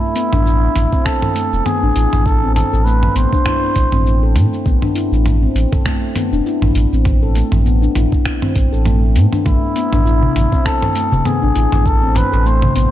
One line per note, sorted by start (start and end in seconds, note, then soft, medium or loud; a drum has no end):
0.00 0.14 A3 medium
0.00 1.07 E4 medium
0.16 0.32 B3 medium
0.16 closed hi-hat medium
0.16 shaker medium
0.32 0.68 A1 medium
0.32 0.44 D4 medium
0.32 mid tom medium
0.32 shaker soft
0.46 0.62 E4 medium
0.46 shaker soft
0.75 0.86 A1 medium
0.75 closed hi-hat medium
0.75 mid tom medium
0.75 shaker medium
0.93 1.21 C4 medium
0.93 kick loud
0.93 shaker soft
1.06 1.67 A4 medium
1.06 finger snap medium
1.06 kick medium
1.06 shaker soft
1.22 1.30 A4 medium
1.22 mid tom medium
1.36 1.64 A3 medium
1.36 closed hi-hat medium
1.36 shaker medium
1.53 1.61 E1 medium
1.53 shaker soft
1.66 1.82 B3 medium
1.66 2.28 G#4 medium
1.66 mid tom medium
1.66 shaker soft
1.83 1.91 A1 medium
1.83 1.95 D4 medium
1.96 2.06 A1 loud
1.96 2.12 E4 medium
1.96 closed hi-hat medium
1.96 shaker medium
2.13 2.63 A1 medium
2.13 mid tom medium
2.13 shaker soft
2.26 2.54 A4 loud
2.26 kick loud
2.26 shaker soft
2.43 2.71 C4 medium
2.55 2.86 A4 medium
2.55 closed hi-hat medium
2.55 mid tom medium
2.55 shaker medium
2.73 3.08 A1 medium
2.73 2.80 A4 medium
2.73 shaker soft
2.85 3.14 A3 medium
2.85 3.17 B4 loud
2.85 shaker soft
3.03 mid tom medium
3.16 3.26 A1 medium
3.16 3.32 B3 medium
3.16 4.36 C5 loud
3.16 closed hi-hat medium
3.16 shaker medium
3.33 3.45 D4 medium
3.33 kick loud
3.33 shaker soft
3.46 3.62 E4 medium
3.46 finger snap medium
3.46 kick medium
3.46 mid tom medium
3.46 shaker soft
3.76 3.87 A1 loud
3.76 kick loud
3.76 closed hi-hat medium
3.76 shaker medium
3.92 4.37 A1 medium
3.92 4.21 C4 medium
3.92 mid tom medium
3.92 shaker soft
4.07 shaker soft
4.23 4.30 A4 medium
4.35 4.46 A2 medium
4.35 4.64 A3 medium
4.35 closed hi-hat medium
4.35 mid tom medium
4.35 shaker medium
4.53 shaker soft
4.65 4.76 A1 medium
4.65 4.82 B3 medium
4.65 kick loud
4.65 shaker soft
4.82 4.95 D4 medium
4.82 mid tom medium
4.95 5.11 E4 medium
4.95 closed hi-hat medium
4.95 shaker medium
5.12 5.48 A1 medium
5.12 shaker soft
5.26 mid tom medium
5.26 shaker soft
5.43 5.71 C4 medium
5.55 5.66 A1 medium
5.55 closed hi-hat medium
5.55 shaker medium
5.72 5.80 A4 medium
5.72 kick loud
5.72 mid tom medium
5.72 shaker soft
5.86 6.15 A3 medium
5.86 finger snap medium
5.86 kick loud
5.86 shaker soft
6.16 6.32 B3 medium
6.16 closed hi-hat medium
6.16 mid tom medium
6.16 shaker medium
6.32 6.41 E1 medium
6.32 6.45 D4 medium
6.32 shaker soft
6.46 6.62 E4 medium
6.46 shaker soft
6.62 6.70 A1 medium
6.62 mid tom medium
6.75 6.86 A1 loud
6.75 closed hi-hat medium
6.75 shaker medium
6.92 7.43 A1 medium
6.92 7.21 C4 medium
6.92 shaker soft
7.05 kick loud
7.05 mid tom medium
7.05 shaker soft
7.23 7.30 A4 medium
7.35 7.64 A3 medium
7.35 closed hi-hat medium
7.35 shaker medium
7.52 7.88 A1 medium
7.52 mid tom medium
7.52 shaker soft
7.66 7.82 B3 medium
7.66 shaker soft
7.82 7.94 D4 medium
7.82 shaker soft
7.95 8.06 A1 medium
7.95 8.12 E4 medium
7.95 closed hi-hat medium
7.95 mid tom medium
7.95 shaker medium
8.12 kick loud
8.12 shaker soft
8.26 finger snap medium
8.26 kick medium
8.26 shaker soft
8.42 8.71 C4 medium
8.42 mid tom medium
8.56 8.66 A1 loud
8.56 kick loud
8.56 closed hi-hat medium
8.56 shaker medium
8.72 9.17 A1 medium
8.72 8.80 A4 medium
8.72 shaker soft
8.86 9.15 A3 medium
8.86 mid tom medium
8.86 shaker soft
9.16 9.26 A2 medium
9.16 9.32 B3 medium
9.16 closed hi-hat medium
9.16 shaker medium
9.33 9.45 D4 medium
9.33 mid tom medium
9.33 shaker soft
9.46 9.56 A1 loud
9.46 9.75 A3 medium
9.46 10.67 E4 medium
9.46 kick loud
9.46 mid tom medium
9.46 shaker soft
9.76 9.92 B3 medium
9.76 closed hi-hat medium
9.76 shaker medium
9.92 10.28 A1 medium
9.92 10.04 D4 medium
9.92 mid tom medium
9.92 darbuka ka medium
9.92 shaker soft
10.06 10.22 E4 medium
10.06 shaker soft
10.22 darbuka dum medium
10.36 10.46 A1 medium
10.36 closed hi-hat medium
10.36 mid tom medium
10.36 shaker medium
10.52 10.81 C4 medium
10.52 kick loud
10.52 darbuka ka soft
10.52 shaker soft
10.66 11.28 A4 loud
10.66 finger snap medium
10.66 kick loud
10.66 shaker soft
10.82 10.90 A4 medium
10.82 mid tom medium
10.82 darbuka ka medium
10.95 11.24 A3 medium
10.95 closed hi-hat medium
10.95 shaker medium
11.12 11.21 E1 medium
11.12 darbuka dum medium
11.12 shaker soft
11.26 11.42 B3 medium
11.26 11.88 G#4 medium
11.26 mid tom medium
11.26 shaker soft
11.42 11.51 A1 medium
11.42 11.54 D4 medium
11.55 11.67 A1 loud
11.55 11.72 E4 medium
11.55 closed hi-hat medium
11.55 shaker medium
11.72 12.23 A1 medium
11.72 mid tom medium
11.72 darbuka tek medium
11.72 shaker soft
11.86 12.18 A4 loud
11.86 kick loud
11.86 shaker soft
12.02 12.31 C4 medium
12.15 12.48 B4 loud
12.15 closed hi-hat medium
12.15 mid tom medium
12.15 darbuka tek medium
12.15 shaker medium
12.32 12.68 A1 medium
12.32 12.40 A4 medium
12.32 darbuka ka medium
12.32 shaker soft
12.46 12.74 A3 medium
12.46 12.76 C5 loud
12.46 shaker soft
12.62 mid tom medium
12.62 darbuka dum medium
12.76 12.87 A1 medium
12.76 12.91 B3 medium
12.76 12.91 C5 loud
12.76 closed hi-hat medium
12.76 shaker medium